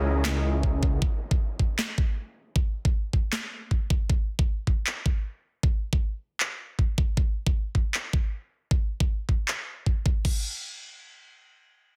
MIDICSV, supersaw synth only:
0, 0, Header, 1, 2, 480
1, 0, Start_track
1, 0, Tempo, 384615
1, 1270, Time_signature, 4, 2, 24, 8
1, 14927, End_track
2, 0, Start_track
2, 0, Title_t, "Supersaw synth"
2, 0, Program_c, 0, 81
2, 0, Note_on_c, 0, 61, 99
2, 0, Note_on_c, 0, 64, 89
2, 0, Note_on_c, 0, 68, 92
2, 0, Note_on_c, 0, 70, 86
2, 0, Note_on_c, 0, 75, 106
2, 1004, Note_off_c, 0, 61, 0
2, 1004, Note_off_c, 0, 64, 0
2, 1004, Note_off_c, 0, 68, 0
2, 1004, Note_off_c, 0, 70, 0
2, 1004, Note_off_c, 0, 75, 0
2, 1034, Note_on_c, 0, 64, 80
2, 1034, Note_on_c, 0, 70, 82
2, 1034, Note_on_c, 0, 78, 102
2, 1035, Note_on_c, 0, 61, 91
2, 1035, Note_on_c, 0, 68, 83
2, 1245, Note_off_c, 0, 61, 0
2, 1245, Note_off_c, 0, 64, 0
2, 1245, Note_off_c, 0, 68, 0
2, 1245, Note_off_c, 0, 70, 0
2, 1245, Note_off_c, 0, 78, 0
2, 14927, End_track
0, 0, End_of_file